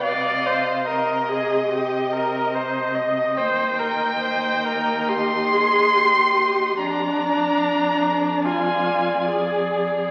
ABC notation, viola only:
X:1
M:4/4
L:1/8
Q:1/4=72
K:Cm
V:1 name="Viola"
d c B A G B c e | c B c B G A G2 | D4 F2 A2 |]